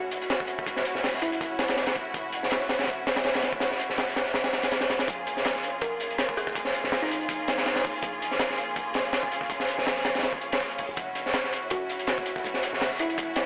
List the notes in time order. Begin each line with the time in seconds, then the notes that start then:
Already playing: F#1 A3 C#4 E4 F#4
0.11 closed hi-hat
0.22 closed hi-hat
0.30 snare, closed hi-hat
0.40 kick
0.47 closed hi-hat
0.59 kick
0.66 kick, closed hi-hat
0.76 snare
0.85 closed hi-hat
0.95 F#1, snare
1.04 snare, open hi-hat
1.14 snare
1.22 E4, closed hi-hat
1.32 closed hi-hat
1.41 kick, closed hi-hat
1.59 snare, closed hi-hat
1.68 snare, closed hi-hat
1.76 snare, closed hi-hat
1.87 snare, closed hi-hat
1.95 kick, closed hi-hat
2.14 F#1, kick, closed hi-hat
2.32 closed hi-hat
2.43 snare
2.51 snare, closed hi-hat
2.61 snare
2.69 snare, closed hi-hat
2.79 snare, closed hi-hat
2.83 snare, closed hi-hat
2.88 kick, closed hi-hat
3.07 snare, closed hi-hat
3.16 snare, closed hi-hat
3.24 snare, closed hi-hat
3.34 snare, closed hi-hat
3.42 snare, closed hi-hat
3.53 kick
3.60 snare, closed hi-hat
3.71 snare
3.79 closed hi-hat
3.89 F#1, snare
3.97 snare, open hi-hat
4.08 snare
4.16 snare, closed hi-hat
4.26 snare
4.34 snare, closed hi-hat
4.44 snare, closed hi-hat
4.53 snare, closed hi-hat
4.63 snare, closed hi-hat
4.71 C#2, snare, closed hi-hat
4.81 snare, closed hi-hat
4.90 snare, closed hi-hat
4.99 snare, closed hi-hat
5.08 A#1 A#3 C#4 F4 G#4, kick, closed hi-hat
5.27 closed hi-hat
5.37 snare
5.45 snare, closed hi-hat
5.55 snare, closed hi-hat
5.63 closed hi-hat
5.81 A#4, kick, closed hi-hat
6.00 closed hi-hat
6.10 closed hi-hat
6.18 snare, closed hi-hat
6.29 kick
6.37 G#4, closed hi-hat
6.47 G#4, kick, snare
6.55 kick, closed hi-hat
6.65 snare
6.74 closed hi-hat
6.84 A#1, snare
6.92 snare, closed hi-hat, open hi-hat
7.02 D#4, snare
7.11 closed hi-hat
7.21 closed hi-hat
7.29 kick, closed hi-hat
7.48 snare, closed hi-hat
7.58 snare, closed hi-hat
7.66 snare, closed hi-hat
7.76 snare, closed hi-hat
7.84 kick, closed hi-hat, open hi-hat
8.02 A#1, kick, closed hi-hat
8.22 closed hi-hat
8.31 snare
8.39 snare, closed hi-hat
8.50 snare, closed hi-hat
8.58 closed hi-hat
8.76 kick, closed hi-hat
8.94 snare, closed hi-hat
9.05 closed hi-hat
9.13 snare, closed hi-hat
9.23 kick
9.32 closed hi-hat
9.41 kick, snare
9.50 kick, closed hi-hat
9.60 snare
9.68 closed hi-hat
9.78 A#1, snare
9.86 snare, closed hi-hat, open hi-hat
9.97 snare
10.05 snare, closed hi-hat
10.15 snare, closed hi-hat
10.19 snare, closed hi-hat
10.23 snare, closed hi-hat
10.33 kick
10.41 closed hi-hat
10.52 snare, closed hi-hat
10.60 kick, snare, closed hi-hat
10.70 closed hi-hat
10.78 G#1, kick, closed hi-hat, open hi-hat
10.89 G#1
10.97 F#1 A3 E4 F#4, kick, closed hi-hat
11.15 closed hi-hat
11.26 snare
11.34 snare, closed hi-hat
11.44 snare, closed hi-hat
11.53 closed hi-hat
11.70 F#4, kick, closed hi-hat
11.89 closed hi-hat
11.99 closed hi-hat
12.07 snare, closed hi-hat
12.18 kick
12.26 closed hi-hat
12.36 kick, snare
12.44 kick, closed hi-hat
12.54 snare
12.63 closed hi-hat
12.73 F#1, snare
12.81 snare, closed hi-hat, open hi-hat
12.92 snare
12.99 E4, closed hi-hat
13.10 closed hi-hat
13.18 kick, closed hi-hat
13.36 snare, closed hi-hat